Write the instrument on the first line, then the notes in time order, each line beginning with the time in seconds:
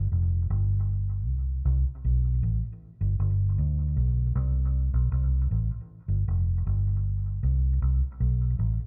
fingered electric bass
0.12 F1
0.50 G1
1.27 C2
1.65 C2
2.04 B1
2.43 A1
3.01 G1
3.19 G1
3.58 D2
3.96 B1
4.36 C2
4.94 B1
5.12 C2
5.51 A1
6.08 G1
6.28 F1
6.66 G1
7.43 C2
7.82 C2
8.20 B1
8.59 A1